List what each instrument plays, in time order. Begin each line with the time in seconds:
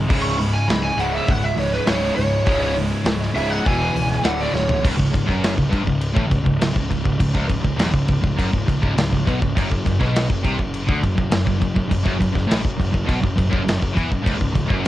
Already playing: picked electric bass C2
0.08 picked electric bass C#1, distorted electric guitar C#2 G#2 C#3 G#3 E4, kick, crash
0.22 lead electric guitar C#6
0.37 distorted electric guitar C#2 G#2, lead electric guitar B5, open hi-hat
0.53 lead electric guitar G#5
0.68 picked electric bass C#1, distorted electric guitar C#2 G#2, lead electric guitar B5, snare, open hi-hat
0.82 lead electric guitar G#5, snare
0.96 picked electric bass C#1, distorted electric guitar C#2 G#2 C#3 G#3 E4, lead electric guitar F#5, open hi-hat
1.14 lead electric guitar E5
1.27 picked electric bass C#1, distorted electric guitar C#2 G#2, lead electric guitar F#5, kick, open hi-hat
1.44 lead electric guitar E5
1.56 picked electric bass C#1, distorted electric guitar C#2 G#2, lead electric guitar C#5, open hi-hat
1.73 lead electric guitar B4, snare
1.86 picked electric bass C#1, distorted electric guitar C#2 G#2 C#3, lead electric guitar C#5, snare, open hi-hat
2.16 picked electric bass C#1, distorted electric guitar C#2 G#2, lead electric guitar C#5, open hi-hat
2.46 picked electric bass C#1, distorted electric guitar C#2 G#2 C#3 G#3 E4, kick, open hi-hat
2.76 distorted electric guitar C#2 G#2, open hi-hat
3.05 picked electric bass C#1, distorted electric guitar C#2 G#2, snare, open hi-hat
3.23 snare
3.34 picked electric bass C#1, distorted electric guitar C#2 G#2 C#3 G#3 E4, lead electric guitar E5, open hi-hat
3.50 lead electric guitar F#5
3.65 picked electric bass E1, distorted electric guitar E2 B2 E3, lead electric guitar G#5, kick, open hi-hat
3.93 picked electric bass C#1, distorted electric guitar E2 B2, open hi-hat
4.12 snare
4.23 picked electric bass D1, distorted electric guitar D2 A2 D3, lead electric guitar F#5, snare, open hi-hat
4.41 lead electric guitar D5
4.53 picked electric bass D1, distorted electric guitar D2 A2, lead electric guitar C#5, snare
4.69 floor tom
4.83 picked electric bass C#1, distorted electric guitar C#2, kick, crash
4.97 picked electric bass C#1, distorted electric guitar C#2, kick
5.12 picked electric bass C#1, distorted electric guitar C#2, kick, crash
5.26 picked electric bass F#1, distorted electric guitar F#2, kick, snare
5.44 snare, crash
5.56 picked electric bass C#1, distorted electric guitar C#2, kick
5.70 picked electric bass G1, distorted electric guitar G2, kick, crash
5.85 picked electric bass C#1, distorted electric guitar C#2, kick
6.01 crash
6.14 picked electric bass A1, distorted electric guitar A2, kick
6.28 distorted electric guitar C#2
6.32 picked electric bass C#1, kick, crash
6.44 picked electric bass C#1, distorted electric guitar C#2, kick
6.59 picked electric bass C#1, distorted electric guitar C#2, snare, crash
6.73 picked electric bass C#1, distorted electric guitar C#2, kick
6.90 picked electric bass C#1, distorted electric guitar C#2, kick, crash
7.05 picked electric bass C#1, distorted electric guitar C#2, kick
7.20 picked electric bass C#1, distorted electric guitar C#2, kick, crash
7.35 picked electric bass C#1, distorted electric guitar C#2, kick
7.49 picked electric bass C#1, distorted electric guitar C#2, kick, crash
7.64 picked electric bass C#1, distorted electric guitar C#2, kick
7.76 picked electric bass E1, distorted electric guitar E2, snare, crash
7.94 picked electric bass C#1, distorted electric guitar C#2, kick
8.08 picked electric bass C#1, distorted electric guitar C#2, kick, crash
8.22 picked electric bass C#1, distorted electric guitar C#2, kick
8.38 picked electric bass F#1, distorted electric guitar F#2, kick, crash
8.53 picked electric bass C#1, distorted electric guitar C#2, kick
8.67 picked electric bass C#1, distorted electric guitar C#2, kick, crash
8.82 picked electric bass C#1, distorted electric guitar C#2, kick
8.96 picked electric bass C#1, distorted electric guitar C#2, snare, crash
9.11 picked electric bass C#1, distorted electric guitar C#2, kick
9.26 picked electric bass B1, distorted electric guitar B2, kick, crash
9.42 picked electric bass C#1, distorted electric guitar C#2, kick
9.56 picked electric bass F#1, distorted electric guitar F#2, kick, crash
9.71 picked electric bass F#1, distorted electric guitar F#2, kick
9.85 picked electric bass F#1, distorted electric guitar F#2, kick, crash
9.99 picked electric bass B1, distorted electric guitar B2, kick, snare
10.16 snare, crash
10.29 picked electric bass F#1, distorted electric guitar F#2, kick
10.43 picked electric bass C2, distorted electric guitar C3, kick, crash
10.57 picked electric bass F#1, distorted electric guitar F#2, kick
10.74 crash
10.86 picked electric bass D2, distorted electric guitar D3, kick
11.01 picked electric bass F#1, distorted electric guitar F#2, kick, crash
11.15 picked electric bass F#1, distorted electric guitar F#2, kick
11.29 picked electric bass F#1, distorted electric guitar F#2, snare, crash
11.45 picked electric bass F#1, distorted electric guitar F#2, kick
11.59 picked electric bass F#1, distorted electric guitar F#2, kick, crash
11.74 picked electric bass F#1, distorted electric guitar F#2, kick
11.88 picked electric bass F#1, distorted electric guitar F#2, kick, crash
12.03 picked electric bass F#1, distorted electric guitar F#2, kick
12.19 picked electric bass F#1, distorted electric guitar F#2, kick, crash
12.33 picked electric bass F#1, distorted electric guitar F#2, kick
12.37 snare
12.47 picked electric bass A1, distorted electric guitar A2, crash
12.52 snare
12.63 picked electric bass F#1, distorted electric guitar F#2, kick
12.77 picked electric bass F#1, distorted electric guitar F#2, kick, crash
12.92 picked electric bass F#1, distorted electric guitar F#2, kick
13.06 picked electric bass B1, distorted electric guitar B2, kick, crash
13.22 picked electric bass F#1, distorted electric guitar F#2, kick
13.36 picked electric bass F#1, distorted electric guitar F#2, kick, crash
13.50 picked electric bass F#1, distorted electric guitar F#2, kick
13.64 picked electric bass F#1, distorted electric guitar F#2
13.68 snare, crash
13.79 picked electric bass F#1, distorted electric guitar F#2, kick
13.95 picked electric bass E2, distorted electric guitar E3, kick, crash
14.09 picked electric bass F#1, distorted electric guitar F#2, kick
14.23 picked electric bass C#1, distorted electric guitar C#2, kick, crash
14.38 picked electric bass C#1, distorted electric guitar C#2, kick
14.54 picked electric bass C#1, distorted electric guitar C#2, kick, crash
14.67 picked electric bass F#1, distorted electric guitar F#2, kick